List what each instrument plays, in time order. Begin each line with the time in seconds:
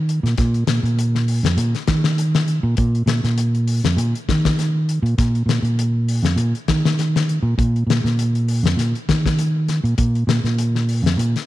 Already playing: fingered electric bass D#3
0.09 closed hi-hat
0.23 fingered electric bass A#2, snare, closed hi-hat
0.38 fingered electric bass A#2, kick, snare, closed hi-hat
0.54 closed hi-hat
0.67 fingered electric bass A#2, snare, closed hi-hat
0.83 fingered electric bass A#2, closed hi-hat
0.99 closed hi-hat
1.15 snare
1.28 open hi-hat
1.43 fingered electric bass F2, snare
1.57 fingered electric bass A#2, closed hi-hat
1.75 snare, closed hi-hat
1.87 fingered electric bass D#3, kick, snare, closed hi-hat
2.04 snare
2.18 closed hi-hat
2.35 snare, closed hi-hat
2.48 closed hi-hat
2.63 fingered electric bass A#2
2.77 fingered electric bass A#2, kick, closed hi-hat
2.95 closed hi-hat
3.06 fingered electric bass A#2, snare, closed hi-hat
3.24 fingered electric bass A#2, snare, closed hi-hat
3.38 closed hi-hat
3.55 closed hi-hat
3.68 open hi-hat
3.84 fingered electric bass F2, snare, closed hi-hat
3.97 fingered electric bass A#2, closed hi-hat
4.15 closed hi-hat
4.29 fingered electric bass D#3, kick, snare, closed hi-hat
4.45 kick, snare, closed hi-hat
4.59 snare, closed hi-hat
4.89 closed hi-hat
5.03 fingered electric bass A#2, closed hi-hat
5.18 fingered electric bass A#2, kick, snare, closed hi-hat
5.35 closed hi-hat
5.46 fingered electric bass A#2, snare, closed hi-hat
5.62 fingered electric bass A#2, closed hi-hat
5.79 closed hi-hat
6.08 open hi-hat
6.23 fingered electric bass F2, snare, closed hi-hat
6.36 fingered electric bass A#2, closed hi-hat
6.55 closed hi-hat
6.68 fingered electric bass D#3, kick, snare, closed hi-hat
6.85 snare
6.99 snare, closed hi-hat
7.16 snare, closed hi-hat
7.29 closed hi-hat
7.43 fingered electric bass A#2
7.58 fingered electric bass A#2, kick, closed hi-hat
7.76 closed hi-hat
7.87 fingered electric bass A#2, snare, closed hi-hat
8.04 fingered electric bass A#2, snare, closed hi-hat
8.19 closed hi-hat
8.35 closed hi-hat
8.48 open hi-hat
8.63 fingered electric bass F2, snare, closed hi-hat
8.76 fingered electric bass A#2, snare, closed hi-hat
8.95 closed hi-hat
9.09 fingered electric bass D#3, kick, snare, closed hi-hat
9.26 kick, snare, closed hi-hat
9.39 closed hi-hat
9.68 snare, closed hi-hat
9.84 fingered electric bass A#2, closed hi-hat
9.98 fingered electric bass A#2, kick, closed hi-hat
10.15 closed hi-hat
10.27 fingered electric bass A#2, snare, closed hi-hat
10.44 fingered electric bass A#2, snare, closed hi-hat
10.58 closed hi-hat
10.76 snare
10.89 open hi-hat
11.03 fingered electric bass F2, snare, closed hi-hat
11.17 fingered electric bass A#2, closed hi-hat
11.36 snare, closed hi-hat